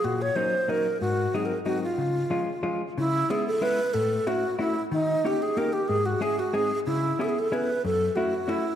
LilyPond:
<<
  \new Staff \with { instrumentName = "Alto flute" } { \time 3/4 \key des \major \tempo 4 = 186 ges'8 des''8 c''4 bes'4 | ges'4 \tuplet 3/2 { aes'8 bes'8 r8 } ges'8 f'8~ | f'2~ f'8 r8 | \key cis \minor e'4 gis'8 a'8 b'4 |
a'4 fis'4 e'8. r16 | dis'4 g'8 gis'8 ais'8 g'8 | gis'8 fis'8 gis'8 fis'8 gis'8. r16 | e'4 gis'32 a'32 gis'16 a'8 b'4 |
a'4 fis'4 e'8. r16 | }
  \new Staff \with { instrumentName = "Hollow-body jazz guitar" } { \time 3/4 \key des \major bes,4 <ges bes des' ees'>8 r8 <ges bes des' ees'>8 r8 | aes,4 <ges aes c' ees'>8 r8 <ges aes c' ees'>8 r8 | des4 <f aes des' f'>8 r8 <f aes des' f'>8 r8 | \key cis \minor cis4 <gis b cis' e'>8 r8 <gis b cis' e'>8 r8 |
a,4 <a cis' e' fis'>8 r8 <a cis' e' fis'>8 r8 | dis4 <ais cis' dis' g'>8 r8 <ais cis' dis' g'>8 r8 | gis,4 <gis cis' e' gis'>8 r8 <gis bis dis' gis'>8 r8 | cis4 <b cis' e' gis'>8 r8 <b cis' e' gis'>8 r8 |
fis,4 <a cis' e' fis'>8 r8 <a cis' e' fis'>8 r8 | }
>>